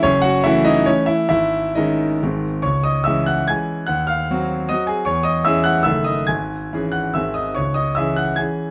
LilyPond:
<<
  \new Staff \with { instrumentName = "Grand piano" } { \time 3/4 \key cis \minor \tempo 4 = 144 <cis' cis''>8 <fis' fis''>8 <e' e''>8 <dis' dis''>8 <cis' cis''>8 <e' e''>8 | <e' e''>4 <dis' dis''>4 r4 | <cis'' cis'''>8 <dis'' dis'''>8 <e'' e'''>8 <fis'' fis'''>8 <gis'' gis'''>4 | <ges'' ges'''>8 <eis'' eis'''>4. <ees'' ees'''>8 <gis' gis''>8 |
<cis'' cis'''>8 <dis'' dis'''>8 <e'' e'''>8 <fis'' fis'''>8 <e'' e'''>8 <dis'' dis'''>8 | <gis'' gis'''>4. <fis'' fis'''>8 <e'' e'''>8 <dis'' dis'''>8 | <cis'' cis'''>8 <dis'' dis'''>8 <e'' e'''>8 <fis'' fis'''>8 <gis'' gis'''>4 | }
  \new Staff \with { instrumentName = "Grand piano" } { \clef bass \time 3/4 \key cis \minor fis,,4 <e a cis'>4 <e a>4 | gis,,4 <dis gis cis'>4 <gis,, dis gis bis>4 | cis,4 <e gis cis'>4 <e gis cis'>4 | ees,4 <ges c' ges'>4 <ges c' ges'>4 |
e,4 <e cis' gis'>4 <fis,, dis a a'>4 | gis,,4 <e cis' gis'>4 <gis,, dis bis gis'>4 | cis,4 <e cis' gis'>4 <e cis' gis'>4 | }
>>